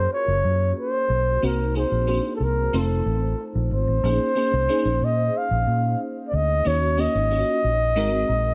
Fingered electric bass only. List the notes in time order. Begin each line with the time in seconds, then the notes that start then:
0.28 F#1
0.44 F#2
1.10 B1
1.43 C2
1.92 A#1
2.40 C2
2.73 F1
3.06 A1
3.55 A#1
3.71 G#1
3.87 A1
4.03 A#1
4.53 C2
4.85 A#1
5.01 A#2
5.51 A#1
5.67 A#2
6.33 D2
6.66 D#2
7.15 G#1
7.64 A#1
7.96 G#1
8.29 A#1